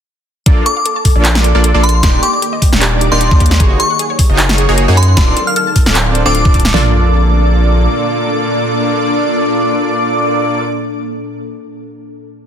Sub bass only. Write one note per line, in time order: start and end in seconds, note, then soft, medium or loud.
0.46 0.62 A#1 medium
1.16 1.53 A#1 medium
1.55 1.72 A#1 loud
1.75 2.01 A#1 loud
2.03 2.18 D#1 loud
2.73 3.10 D#1 loud
3.12 3.29 D#1 loud
3.31 3.61 D#2 loud
3.60 3.75 F#1 loud
4.30 4.67 F#1 loud
4.69 4.86 F#1 loud
4.89 5.15 F#2 loud
5.17 5.32 D1 medium
5.86 6.24 D1 loud
6.26 6.43 D1 medium
6.45 6.72 D1 loud
6.74 7.87 A#1 loud